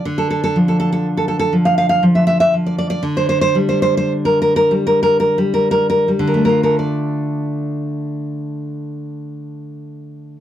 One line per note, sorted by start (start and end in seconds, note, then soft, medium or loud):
0.05 3.01 D3 medium
0.18 0.29 A4 medium
0.30 0.42 A4 medium
0.44 0.56 A4 loud
0.56 1.52 F3 medium
0.68 0.78 A4 medium
0.80 0.91 A4 loud
0.92 1.06 A4 medium
1.17 1.27 A4 medium
1.28 1.38 A4 loud
1.39 1.53 A4 loud
1.53 2.02 F3 medium
1.65 1.77 F5 loud
1.78 1.88 F5 loud
1.89 2.03 F5 loud
2.03 2.52 F3 medium
2.15 2.26 E5 loud
2.27 2.39 E5 loud
2.40 2.53 E5 loud
2.54 3.01 F3 medium
2.66 2.77 D5 medium
2.78 2.89 D5 loud
2.90 3.04 D5 loud
3.03 6.18 D3 loud
3.17 3.28 C5 loud
3.29 3.40 C5 loud
3.41 3.56 C5 loud
3.55 4.70 G3 medium
3.69 3.81 C5 loud
3.82 3.96 C5 loud
3.97 4.12 C5 loud
4.25 4.40 A#4 loud
4.42 4.55 A#4 loud
4.56 4.72 A#4 loud
4.71 5.37 G3 medium
4.87 5.01 A#4 loud
5.03 5.19 A#4 loud
5.20 5.37 A#4 loud
5.38 6.07 G3 medium
5.54 5.70 A#4 loud
5.71 5.88 A#4 loud
5.90 6.09 A#4 loud
6.08 6.49 G3 medium
6.19 10.36 D3 medium
6.27 6.44 A#4 medium
6.34 10.40 A3 medium
6.45 6.62 A#4 medium
6.49 10.40 F4 medium
6.63 10.40 A4 medium
6.63 6.78 A#4 loud
6.79 10.40 D5 medium